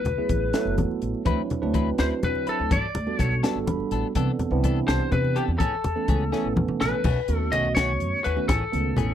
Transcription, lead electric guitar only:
Already playing: B4
2.00 C5
2.24 B4
2.49 A4
2.72 D5
3.19 C#5
4.88 C5
5.12 B4
5.36 G4
5.58 A4
6.81 B4
7.36 A4
7.52 D#5
7.75 C#5
8.24 B4
8.48 A4

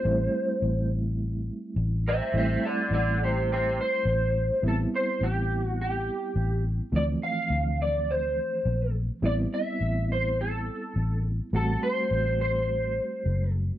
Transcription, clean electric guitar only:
Already playing: C5
2.08 C5 E5
2.37 C5 E5
2.65 A4 D5
2.93 A4 D5
3.23 G4 C5
3.52 G4 C5
3.81 C5
4.68 A4
4.96 C5
5.23 G4
5.65 F#4
5.81 G4
6.96 D5
7.23 F5
7.82 D5
8.11 C5
9.26 D5
9.54 E5
10.12 C5
10.41 A4
11.56 A4
11.83 C5
12.41 C5

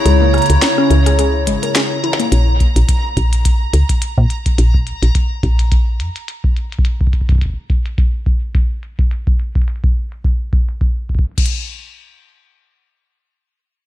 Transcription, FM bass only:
0.06 C#2
0.50 C#2
0.91 C#2
1.47 G#1
2.32 A#1
2.76 A#1
3.17 A#1
3.73 C#2
4.18 A#2
4.58 A#1
5.03 A#1
5.43 A#1
6.00 F2

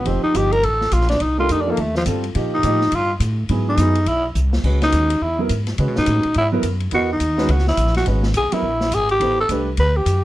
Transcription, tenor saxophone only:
0.07 C4
0.24 D#4
0.36 G4
0.52 A#4
0.64 A4
0.93 F4
1.09 D4
1.22 D#4
1.40 F4
1.52 D#4
1.61 D4
1.71 A#3
1.80 A3
1.97 F3
2.54 D#4
2.95 F4
3.69 D#4
4.08 E4
4.84 D#4
5.23 E4
5.98 D#4
6.38 E4
6.94 F#4
7.12 D#4
7.51 F#4
7.68 E4
7.97 F#4
8.37 G#4
8.53 E4
8.94 G#4
9.11 G4
9.40 A4
9.80 B4
9.97 G4

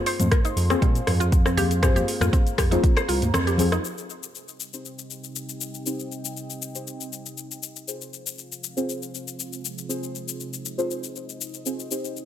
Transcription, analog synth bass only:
0.20 F2
0.56 F2
0.82 A#2
1.07 F2
2.21 F2
2.58 F2
3.09 C2
3.22 D#2
3.34 F2

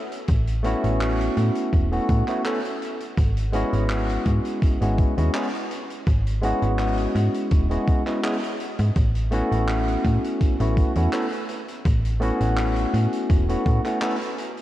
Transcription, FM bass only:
0.28 A1
0.84 A1
1.37 A2
1.73 E1
2.09 A2
3.18 G#1
3.73 G#1
4.26 G#2
4.62 G#1
4.82 G#1
5.18 D#2
6.07 G#1
6.62 G#1
7.15 G#2
7.51 D#1
8.79 G#2
8.96 A1
9.52 A1
10.05 A2
10.41 A1
10.60 A1
10.96 E2
11.85 A1
12.41 A1
12.94 A2
13.30 E1
13.66 A2

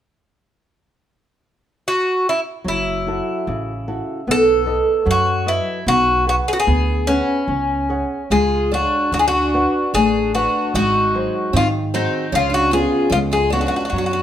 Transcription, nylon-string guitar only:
2.64 F#3
3.07 E4 F#4 A4
3.47 C#3
3.88 E4 F#4 A4
4.28 B3
4.66 A4 B4 D#5
5.06 F#3
5.46 A4 B4 D#5
5.87 B3
6.26 G#4 B4 F#5
6.67 B3
7.08 G#4 B4 F#5
7.49 C#4
7.89 G#4 C#5 F#5
8.31 G#3
8.72 G#4 C#5 F5
9.14 D4
9.54 B4 D5 F#5
9.96 A3
10.35 B4 D5 F#5
10.76 G#3
11.14 F#3 G#4 C5
11.55 D#3
11.94 F#4 G#4 C5
12.33 C#3
12.73 B3 C#4 F4
13.14 G#3
13.52 B3 C#4 F4
13.94 F#3

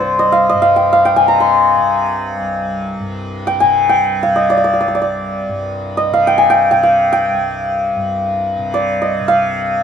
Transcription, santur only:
Already playing: D5
0.00 C5
0.19 D#5
0.32 F5
0.49 D#5
0.62 F5
0.76 G5
0.93 F5
1.05 G5
1.16 G#5
1.28 A#5
1.40 C6
3.47 G5
3.60 G#5
3.89 G5
4.23 F5
4.36 D#5
4.50 D5
4.57 D5
4.64 D5
4.73 D5
4.81 D5
4.88 D5
4.95 D5
5.02 D5
5.97 D#5
6.14 F5
6.27 G5
6.38 G#5
6.50 G5
6.71 G5
6.83 F5
7.12 G5
8.74 D5
9.02 D#5
9.28 F5

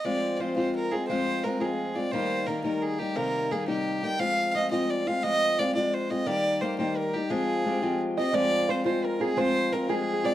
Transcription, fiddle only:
0.05 D5
0.36 D5
0.41 C5
0.56 C5
0.76 A#4
0.91 G#4
1.08 C5
1.44 A#4
1.61 G#4
1.95 D5
2.11 C5
2.47 A#4
2.64 A#4
2.82 G#4
2.99 G4
3.16 A#4
3.51 G#4
3.68 G4
4.04 G5
4.20 F5
4.51 D#5 F5
4.71 D#5
4.90 D5
5.07 F5
5.23 D#5
5.59 D5
5.75 D5
5.94 C5
6.11 D#5
6.27 D5
6.61 C5
6.78 C5
6.97 A#4
7.14 G4
7.30 G#4
8.18 D#5
8.34 D5
8.71 C5
8.86 C5
9.05 A#4
9.21 G#4
9.39 C5
9.73 A#4
9.90 G#4
10.25 D5

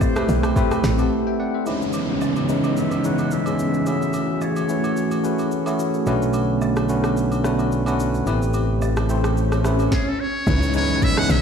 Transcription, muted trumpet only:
2.78 E5
3.06 F#5
3.33 E5
3.88 E5
4.43 C#5
9.93 G#4
10.08 A4
10.20 C#5
10.76 C#5
11.03 E5
11.19 F#5
11.31 E5

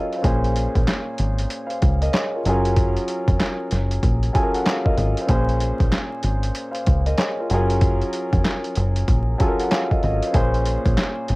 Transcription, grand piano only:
Already playing: F#3 C#4 F4 G#4 A4 A#4 C#5 D#5 F5 F#5 G#5
0.16 C5 F5
0.22 A#2 A#3 C#4 G#4 C5
1.67 C5 F5
2.01 A#4 D#5
2.13 G#4 C#5
2.35 F4 A#4
2.46 F#3 C#4 F4 G#4 A#4
4.33 F#3 C#4 F4 G#4 A4 G#5
4.43 A#4
4.54 F#5
4.66 G#4 C#5 F5
4.85 A#4 D#5 F5
4.99 D#5
5.21 C5 F5
5.27 A#2 A#3 C#4 G#4 C5
6.72 C5 F5
7.06 A#4 D#5
7.18 G#4 C#5
7.40 F4 A#4
7.51 F#3 C#4 F4 G#4 A#4
9.38 F#3 C#4 F4 G#4 A4 G#5
9.48 A#4
9.60 F#5
9.71 G#4 C#5 F5
9.90 A#4 D#5 F5
10.04 D#5
10.26 C5 F5
10.33 A#2 A#3 C#4 G#4 C5

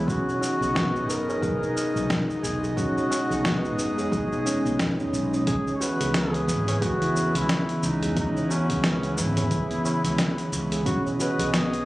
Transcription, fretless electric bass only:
0.08 B1
0.61 B1
1.09 F#1
1.42 B1
1.95 B1
2.43 B1
2.77 B1
3.30 B1
3.78 F#1
4.12 B1
4.65 B1
5.13 B1
5.47 C#2
6.00 C#2
6.47 G#1
6.82 C#2
7.35 C#2
7.83 C#2
8.17 C#2
8.70 C#2
9.17 G#1
9.51 C#2
10.04 C#2
10.52 C#2
10.86 B1
11.39 B1

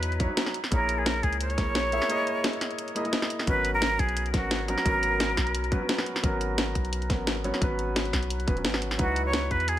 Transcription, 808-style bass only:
Already playing: E2
0.72 A#1
1.23 C#2
1.67 A#1
3.47 G#1
3.99 B1
4.43 G#1
4.86 G#1
5.37 B1
6.24 G#1
6.75 B1
7.19 G#1
7.62 G#1
8.13 B1
8.48 D#1
8.65 G#1
8.99 C#2
9.51 E2

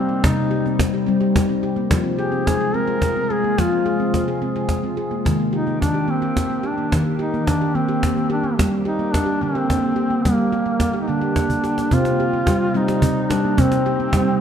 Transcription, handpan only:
Already playing: G3
0.09 A#3
0.25 C3
0.37 C4
0.51 G4
0.66 C4
0.94 G4
1.06 G3 C4
1.21 G4
1.49 C4
1.63 G4
1.76 A#3
1.91 F3
2.04 C4
2.19 G#4
2.32 C4
2.61 G#4
2.74 C4
2.88 G#4
3.16 C4
3.30 G#4
3.44 A#3
3.58 F3
3.72 C4
3.86 G#4
4.00 C4
4.28 G#4
4.42 C4
4.56 G#4
4.84 C4
4.97 G#4
5.11 A#3
5.25 D#3
5.40 A#3
5.53 G4
5.67 A#3
5.94 G4
6.08 A#3
6.22 G4
6.50 A#3
6.63 G4
6.78 A#3
6.93 D#3
7.05 A#3
7.19 G4
7.34 A#3
7.61 G4
7.75 A#3
7.89 G4
8.16 A#3
8.30 G4
8.44 A#3
8.59 G3
8.72 C4
8.85 G4
8.99 A#3
9.26 G4
9.41 D3 A#3
9.55 G4
9.82 A#3
9.96 G4
10.10 A#3
10.26 G3
10.38 C4
10.53 G4
10.66 A#3
10.93 G4
11.08 D3 A#3
11.21 G4
11.50 A#3
11.64 G4
11.78 A#3
11.92 C3 C4
12.20 G4
12.33 C4
12.47 G3 G4
12.74 G3 C4
12.88 G4
13.02 C4
13.30 G3 G4
13.45 A#3
13.57 C3 C4
13.86 G4
14.00 C4
14.13 G3 G4

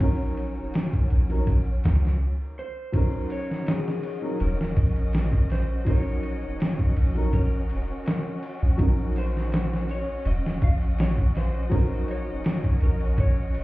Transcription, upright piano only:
0.00 F#3 C#4 D#4 A#4
1.29 F#3 C#4 D#4 A#4
2.92 F#3 C#4 D#4
2.97 A#4
4.22 F#3 C#4 D#4 A#4
5.85 F#3 C#4 D#4
5.89 A#4
7.15 F#3 C#4 D#4 A#4
8.78 F#3 C#4 D#4
8.83 A#4
11.70 F#3 C#4 D#4
11.75 A#4

